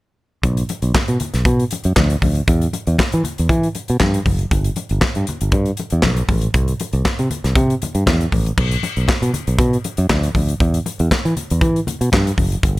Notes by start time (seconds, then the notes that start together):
0.43 B1, kick, closed hi-hat
0.57 closed hi-hat
0.69 closed hi-hat, muted conga
0.82 B1, closed hi-hat
0.95 kick, snare, clap, high conga
1.08 B2, closed hi-hat
1.20 closed hi-hat, low conga
1.34 B1, snare, closed hi-hat
1.45 B2, kick, closed hi-hat, muted conga
1.59 closed hi-hat
1.71 closed hi-hat, muted conga
1.84 F#2, closed hi-hat
1.96 D2, kick, snare, clap, high conga
2.10 closed hi-hat
2.22 D2, kick, open hi-hat, high conga
2.35 closed hi-hat
2.48 E2, kick, closed hi-hat
2.61 closed hi-hat
2.73 closed hi-hat, muted conga
2.87 E2, closed hi-hat
2.98 kick, snare, clap, high conga
3.12 E3, closed hi-hat
3.24 closed hi-hat, low conga
3.38 E2, closed hi-hat
3.49 E3, kick, closed hi-hat, muted conga, low conga
3.63 closed hi-hat
3.75 closed hi-hat, muted conga
3.88 B2, closed hi-hat
4.00 G2, kick, snare, clap, high conga
4.14 closed hi-hat
4.26 F#1, kick, open hi-hat, high conga
4.39 closed hi-hat
4.51 G1, kick, closed hi-hat
4.64 closed hi-hat
4.76 closed hi-hat, muted conga
4.89 G1, closed hi-hat
5.01 kick, snare, clap, high conga
5.15 G2, closed hi-hat
5.27 closed hi-hat, low conga
5.41 G1, closed hi-hat
5.52 G2, kick, closed hi-hat, muted conga
5.66 closed hi-hat
5.77 closed hi-hat, muted conga
5.90 E2, closed hi-hat
6.02 B1, kick, snare, clap, high conga
6.17 closed hi-hat
6.29 A1, kick, open hi-hat, high conga
6.41 closed hi-hat
6.54 C2, kick, closed hi-hat
6.68 closed hi-hat
6.80 closed hi-hat, muted conga
6.93 C2, closed hi-hat
7.05 kick, snare, clap, high conga
7.19 C3, closed hi-hat
7.31 closed hi-hat, low conga
7.44 C2, snare, closed hi-hat
7.55 C3, kick, closed hi-hat, muted conga, low conga
7.70 closed hi-hat
7.82 closed hi-hat, muted conga, low conga
7.95 G2, closed hi-hat
8.06 E2, kick, snare, clap, high conga
8.21 closed hi-hat
8.32 A1, kick, open hi-hat, high conga
8.46 closed hi-hat
8.58 B1, kick, crash, muted conga
8.71 closed hi-hat
8.83 closed hi-hat, muted conga
8.97 B1, closed hi-hat
9.08 kick, snare, clap, high conga
9.22 B2, closed hi-hat
9.34 closed hi-hat, low conga
9.47 B1, closed hi-hat
9.59 B2, kick, closed hi-hat, muted conga
9.73 closed hi-hat
9.84 closed hi-hat, muted conga
9.97 F#2, closed hi-hat
10.09 D2, kick, snare, clap, high conga
10.23 closed hi-hat
10.35 D2, kick, open hi-hat, high conga
10.48 closed hi-hat
10.60 E2, kick, closed hi-hat
10.74 closed hi-hat
10.86 closed hi-hat, muted conga
10.99 E2, closed hi-hat
11.11 kick, snare, clap, high conga
11.25 E3, closed hi-hat
11.37 closed hi-hat, low conga
11.50 E2, closed hi-hat
11.61 E3, kick, closed hi-hat, muted conga, low conga
11.76 closed hi-hat
11.87 closed hi-hat, muted conga, low conga
12.01 B2, closed hi-hat
12.12 G2, kick, snare, clap, high conga
12.27 closed hi-hat
12.38 F#1, kick, open hi-hat, high conga
12.52 closed hi-hat
12.63 G1, kick, closed hi-hat